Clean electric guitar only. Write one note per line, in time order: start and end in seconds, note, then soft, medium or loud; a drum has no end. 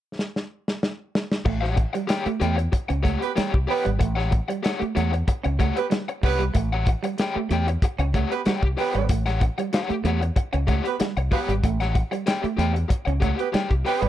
1.45 1.59 A3 medium
1.78 muted clean electric guitar stroke soft
1.95 2.07 G3 medium
2.09 muted clean electric guitar stroke soft
2.26 2.38 A3 medium
2.42 2.55 A3 medium
2.73 muted clean electric guitar stroke soft
2.89 3.01 C#4 medium
3.04 3.18 A3 medium
3.36 3.50 G3 medium
3.69 muted clean electric guitar stroke soft
3.85 3.97 G3 medium
4.00 4.13 A3 medium
4.32 muted clean electric guitar stroke soft
4.49 4.61 G3 medium
4.63 muted clean electric guitar stroke soft
4.80 4.92 A3 medium
4.95 5.09 A3 medium
5.28 muted clean electric guitar stroke soft
5.43 5.56 C#4 medium
5.59 5.73 A3 medium
5.90 6.04 G3 medium
6.22 muted clean electric guitar stroke soft
6.39 6.51 G3 medium
6.54 6.68 A3 medium
6.86 muted clean electric guitar stroke soft
7.03 7.15 G3 medium
7.18 muted clean electric guitar stroke soft
7.35 7.47 A3 medium
7.49 7.63 A3 medium
7.82 muted clean electric guitar stroke soft
7.99 8.11 C#4 medium
8.14 8.28 A3 medium
8.46 8.59 G3 medium
8.78 muted clean electric guitar stroke soft
8.95 9.07 G3 medium
9.10 9.23 A3 medium
9.41 muted clean electric guitar stroke soft
9.58 9.70 G3 medium
9.73 muted clean electric guitar stroke soft
9.89 10.01 A3 medium
10.04 10.18 A3 medium
10.36 muted clean electric guitar stroke soft
10.53 10.65 C#4 medium
10.67 10.81 A3 medium
11.00 11.13 G3 medium
11.32 muted clean electric guitar stroke soft
11.48 11.60 G3 medium
11.64 11.77 A3 medium
11.95 muted clean electric guitar stroke soft
12.11 12.23 G3 medium
12.27 muted clean electric guitar stroke soft
12.43 12.55 A3 medium
12.58 12.72 A3 medium
12.91 muted clean electric guitar stroke soft
13.07 13.19 C#4 medium
13.22 13.35 A3 medium
13.53 13.67 G3 medium
13.85 muted clean electric guitar stroke soft
14.02 14.09 G3 medium